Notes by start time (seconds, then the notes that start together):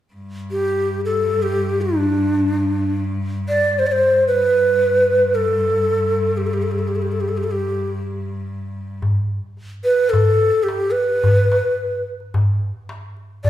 0.14 G2
0.51 G4
1.05 A4
1.42 G4
1.81 D4
3.48 D5
3.79 C5
3.87 D5
3.92 C5
4.27 B4
4.55 G2
5.35 A4
6.37 G4
6.47 A4
6.53 G4
6.62 A4
6.71 G4
6.78 A4
6.88 G4
6.96 A4
7.02 G4
7.12 A4
7.21 G4
7.28 A4
7.37 G4
7.44 A4
7.51 G4
9.02 darbuka dum
9.57 darbuka ka
9.84 B4
9.99 darbuka ka
10.10 A4, darbuka dum
10.63 G4
10.68 darbuka tek
10.83 darbuka ka
10.91 B4
10.97 darbuka ka
11.24 darbuka dum
11.52 darbuka tek
11.79 darbuka ka
12.20 darbuka ka
12.34 darbuka dum
12.89 darbuka tek
13.03 darbuka ka
13.17 darbuka ka
13.44 D5, darbuka dum